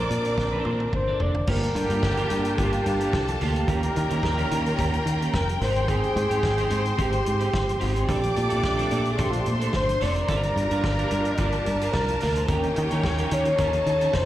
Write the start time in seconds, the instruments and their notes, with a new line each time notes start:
Already playing: string section A#3 C4 D4, flugelhorn A#4, violin section D5 D6
0.10 fingered electric bass A#2, muted clean electric guitar stroke, closed hi-hat
0.25 muted clean electric guitar stroke, closed hi-hat
0.38 fingered electric bass A#1, muted clean electric guitar stroke, kick, snare
0.52 clean electric guitar D4 A4 C5
0.65 fingered electric bass A#2, clean electric guitar D4 A4 C5, high tom
0.80 muted clean electric guitar stroke, high tom
0.93 fingered electric bass G1, flugelhorn C5, muted clean electric guitar stroke, kick, mid tom
1.08 clean electric guitar D4 A4 D5
1.20 fingered electric bass F1, clean electric guitar D4 A4 D5, flugelhorn D5, floor tom
1.35 muted clean electric guitar stroke, floor tom
1.47 fingered electric bass G1, horn section D3 G3 A#3 G4, string section G3 A#3 D4 F4 A5, clean electric guitar A#3 F4 G4, violin section G4 G5, flugelhorn A#4, kick, crash
1.63 muted clean electric guitar stroke, closed hi-hat
1.75 fingered electric bass G2, muted clean electric guitar stroke, closed hi-hat
1.89 fingered electric bass G2, clean electric guitar A#3 F4 G4, closed hi-hat
2.03 fingered electric bass G1, kick, snare
2.17 clean electric guitar A#3 F4 G4, closed hi-hat
2.30 fingered electric bass G2, clean electric guitar A#3 F4 G4, closed hi-hat
2.45 muted clean electric guitar stroke, closed hi-hat
2.58 fingered electric bass G1, clean electric guitar A#3 F4 G4, flugelhorn G4, kick, closed hi-hat
2.73 muted clean electric guitar stroke, closed hi-hat
2.85 fingered electric bass G2, violin section A4 A5, muted clean electric guitar stroke, closed hi-hat
3.00 clean electric guitar A#3 F4 G4, closed hi-hat
3.13 fingered electric bass C2, kick, snare
3.28 muted clean electric guitar stroke, closed hi-hat
3.41 fingered electric bass D2, clean electric guitar A#3 F4 G4, flugelhorn G4, open hi-hat
3.55 clean electric guitar A#3 F4 A4, closed hi-hat
3.67 fingered electric bass D#2, string section D#3 C#4 F4 G5, horn section G3 A#3 D#4 A#4, clean electric guitar A#3 C#4 G4, violin section A#4 A#5, kick, closed hi-hat
3.71 string section A#3
3.82 muted clean electric guitar stroke, closed hi-hat
3.95 fingered electric bass D#3, muted clean electric guitar stroke, closed hi-hat
4.09 fingered electric bass D#3, clean electric guitar A#3 C#4 G4, closed hi-hat
4.23 fingered electric bass D#2, kick, snare
4.37 clean electric guitar A#3 C#4 G4, closed hi-hat
4.51 fingered electric bass D#3, clean electric guitar A#3 C#4 G4, closed hi-hat
4.65 muted clean electric guitar stroke, closed hi-hat
4.78 fingered electric bass D#2, clean electric guitar A#3 C#4 G4, kick, closed hi-hat
4.92 muted clean electric guitar stroke, closed hi-hat
5.06 fingered electric bass D#3, muted clean electric guitar stroke, closed hi-hat
5.21 clean electric guitar A#3 C#4 G4, closed hi-hat
5.34 fingered electric bass F1, flugelhorn A#4, muted clean electric guitar stroke, kick, snare
5.49 muted clean electric guitar stroke, closed hi-hat
5.60 fingered electric bass G#1, string section G#3 C4, horn section G#3 G4 C5 G5, clean electric guitar C4 D#4 G4, violin section C5 C6, flugelhorn C5, snare, open hi-hat
5.76 clean electric guitar C4 D#4 G#4, closed hi-hat
5.88 clean electric guitar C4 D#4 G4, flugelhorn G#4, kick, closed hi-hat
6.03 muted clean electric guitar stroke, closed hi-hat
6.16 fingered electric bass G#2, muted clean electric guitar stroke, closed hi-hat
6.30 fingered electric bass G#2, clean electric guitar C4 D#4 G4, closed hi-hat
6.43 fingered electric bass G#1, muted clean electric guitar stroke, kick, snare
6.58 clean electric guitar C4 D#4 G4, closed hi-hat
6.70 fingered electric bass G#2, clean electric guitar C4 D#4 G4, closed hi-hat
6.84 muted clean electric guitar stroke, closed hi-hat
6.97 fingered electric bass G#1, clean electric guitar C4 D#4 G4, flugelhorn G4, kick, closed hi-hat
7.12 muted clean electric guitar stroke, closed hi-hat
7.25 fingered electric bass G#2, muted clean electric guitar stroke, closed hi-hat
7.40 clean electric guitar C4 D#4 G4, closed hi-hat
7.53 fingered electric bass G1, muted clean electric guitar stroke, kick, snare
7.67 muted clean electric guitar stroke, closed hi-hat
7.80 fingered electric bass G#1, clean electric guitar C4 D#4 G4, flugelhorn G4, open hi-hat
7.95 clean electric guitar C4 D#4 G#4, closed hi-hat
8.07 fingered electric bass A#1, string section A#2 A3 D4, horn section A3 D4 F4 D5, clean electric guitar C4 D4 A4, violin section D5 D6, kick, closed hi-hat
8.22 muted clean electric guitar stroke, closed hi-hat
8.34 fingered electric bass A#2, muted clean electric guitar stroke, closed hi-hat
8.49 fingered electric bass A#2, clean electric guitar C4 D4 A4, closed hi-hat
8.62 fingered electric bass A#1, muted clean electric guitar stroke, kick, snare
8.77 clean electric guitar C4 D4 A4, closed hi-hat
8.90 fingered electric bass A#2, clean electric guitar C4 D4 A4, closed hi-hat
9.05 muted clean electric guitar stroke, closed hi-hat
9.13 flugelhorn G#4
9.18 fingered electric bass A#1, clean electric guitar C4 D4 A4, flugelhorn G4, violin section C5 C6, kick, closed hi-hat
9.31 flugelhorn F4, muted clean electric guitar stroke, closed hi-hat
9.41 flugelhorn G4, muted clean electric guitar stroke
9.46 fingered electric bass A#2, closed hi-hat
9.60 clean electric guitar C4 D4 A4, closed hi-hat
9.73 fingered electric bass G1, flugelhorn C5, muted clean electric guitar stroke, kick, snare
9.88 muted clean electric guitar stroke, closed hi-hat
10.01 fingered electric bass F1, clean electric guitar C4 D4 A4, flugelhorn D5, snare, open hi-hat
10.16 clean electric guitar C4 D4 A#4, closed hi-hat
10.27 fingered electric bass G1, string section G3 D4 F4 G4 A#4, horn section G3 A#3 F4 A#4, clean electric guitar D4 F4 A#4, violin section A#4 A#5, kick, closed hi-hat
10.42 muted clean electric guitar stroke, closed hi-hat
10.56 fingered electric bass G2, muted clean electric guitar stroke, closed hi-hat
10.71 fingered electric bass G2, clean electric guitar D4 F4 A#4, closed hi-hat
10.84 fingered electric bass G1, muted clean electric guitar stroke, kick, snare
10.98 clean electric guitar D4 F4 A#4, closed hi-hat
11.11 fingered electric bass G2, clean electric guitar D4 F4 A#4, closed hi-hat
11.25 muted clean electric guitar stroke, closed hi-hat
11.34 flugelhorn D#5, closed hi-hat
11.38 fingered electric bass G1, clean electric guitar D4 F4 A#4, violin section A#4 A5, flugelhorn D5, kick
11.52 muted clean electric guitar stroke, closed hi-hat
11.66 fingered electric bass G2, muted clean electric guitar stroke, closed hi-hat
11.81 clean electric guitar D4 F4 A#4, closed hi-hat
11.92 fingered electric bass C2, flugelhorn A#4, kick, snare
12.08 muted clean electric guitar stroke, closed hi-hat
12.20 fingered electric bass D2, clean electric guitar D4 F4 A#4, open hi-hat
12.36 clean electric guitar D4 F4 C5, closed hi-hat
12.48 fingered electric bass D#2, string section D#3 A#3 C#4 D#4 F4, horn section A#3 C#4 G4 C#5, clean electric guitar C#4 G4 A#4, violin section G4 G5, flugelhorn A#4, kick, closed hi-hat
12.63 muted clean electric guitar stroke, closed hi-hat
12.76 fingered electric bass D#3, muted clean electric guitar stroke, closed hi-hat
12.91 fingered electric bass D#3, clean electric guitar C#4 G4 A#4, closed hi-hat
13.04 fingered electric bass D#2, muted clean electric guitar stroke, kick, snare
13.18 clean electric guitar C#4 G4 A#4, closed hi-hat
13.31 fingered electric bass D#3, clean electric guitar C#4 G4 A#4, flugelhorn C#5, closed hi-hat
13.45 muted clean electric guitar stroke, closed hi-hat
13.58 fingered electric bass D#2, clean electric guitar C#4 G4 A#4, violin section A4 A5, kick, closed hi-hat
13.73 muted clean electric guitar stroke, closed hi-hat
13.86 fingered electric bass D#3, muted clean electric guitar stroke, closed hi-hat
14.01 clean electric guitar C#4 G4 A#4, closed hi-hat
14.13 fingered electric bass F1, flugelhorn C5, muted clean electric guitar stroke, kick, snare